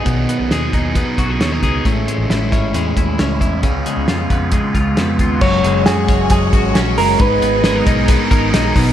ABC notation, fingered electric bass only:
X:1
M:4/4
L:1/16
Q:1/4=134
K:C#m
V:1 name="Fingered electric bass" clef=bass
B,,,2 z B,,, D,,2 D,,3 z B,,,2 D,,2 C,,2 | A,,,2 z A,,, A,,,2 G,,,2 E,,2 D,,2 C,,2 E,,2 | C,,2 z C,, ^E,,2 E,,3 z C,,2 E,,2 D,,2 | [K:F#mix] F,,,2 F,,,2 F,,2 F,,,2 F,,,2 G,,,2 A,,,2 F,,,2 |
G,,,2 G,,,4 B,,,3 z G,,,2 A,,,2 B,,,2 |]